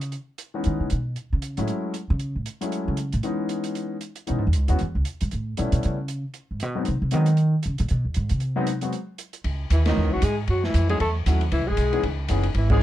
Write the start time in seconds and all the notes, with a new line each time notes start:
Already playing: C#3
0.01 closed hi-hat
0.12 closed hi-hat
0.38 closed hi-hat
0.54 E3 G#3 B3 C#4 D#4
0.64 D#3, closed hi-hat
0.80 C#3
0.90 B2, closed hi-hat
1.16 closed hi-hat
1.33 C#3
1.42 closed hi-hat
1.57 A2 F#3 G#3 A3 C#4 E4, closed hi-hat
1.68 closed hi-hat
1.94 closed hi-hat
2.10 C#3
2.19 closed hi-hat
2.36 A2
2.46 closed hi-hat
2.61 F#3 G#3 A3 C#4 E4, closed hi-hat
2.72 closed hi-hat
2.88 C#3
2.97 closed hi-hat
3.12 A2, closed hi-hat
3.23 E3 G#3 B3 C#4 D#4, closed hi-hat
3.49 closed hi-hat
3.64 closed hi-hat
3.75 closed hi-hat
4.01 closed hi-hat
4.16 closed hi-hat
4.27 B2 E3 G#3 B3 C#4 D#4, closed hi-hat
4.38 G#2
4.47 E2
4.53 C#2, closed hi-hat
4.68 D#2 E3 G#3 B3 C#4 F#4, closed hi-hat
4.79 E2, closed hi-hat
4.95 C#2
5.05 closed hi-hat
5.21 G#2, closed hi-hat
5.31 A2, closed hi-hat
5.57 B2 G3 A3 B3 C#4 E4, closed hi-hat
5.72 B2, closed hi-hat
5.83 C#3, closed hi-hat
6.08 closed hi-hat
6.34 closed hi-hat
6.51 G#2
6.60 B2, closed hi-hat
6.75 F#3 G#3 B3 C4 D#4
6.85 C3, closed hi-hat
7.02 C3
7.11 D#3 F#3 G#3 B3 C4 D#4, closed hi-hat
7.26 closed hi-hat
7.37 closed hi-hat
7.63 C#3, closed hi-hat
7.78 A#2, closed hi-hat
7.88 B2, closed hi-hat
8.05 D#2
8.14 G#2, closed hi-hat
8.29 C3, closed hi-hat
8.40 closed hi-hat
8.56 F#3 G#3 B3 C4 D#4
8.67 closed hi-hat
8.81 F#3 G#3 B3 C4 F#4, closed hi-hat
8.92 closed hi-hat
9.18 closed hi-hat
9.33 closed hi-hat
9.44 C#2, kick, ride
9.70 D#2 E3 E4, kick, hi-hat pedal, ride
9.86 D#3 E3 G#3 B3 C#4 D#4, snare, ride
9.97 E2
10.06 C#2
10.12 B1 F#3 F#4
10.22 G#2 G#3 G#4, kick, hi-hat pedal, ride
10.48 F#2 F#3 F#4, kick, ride
10.64 E3 E4, snare
10.74 F2, kick, hi-hat pedal, ride
10.89 F#3 G#3 A3 C#4 E4 G#4, ride
11.00 E2 A3 A4, kick, ride
11.26 D#2 F#3 A3 C#4 E4 F#4, kick, hi-hat pedal, ride
11.41 ride
11.52 C#2 E3 E4, kick, ride
11.61 B1
11.67 G#1 G#3 G#4
11.77 B1, kick, hi-hat pedal, ride
11.93 E3 B3 C#4 D#4 G#4, ride
12.03 C#2, kick, ride
12.28 F#1 E3 B3 C#4 D#4 G#4, kick, hi-hat pedal, ride
12.43 ride
12.54 G#1 E3 E4, kick, ride
12.70 E3 G#3 B3 C#4 D#4 G#4, kick, crash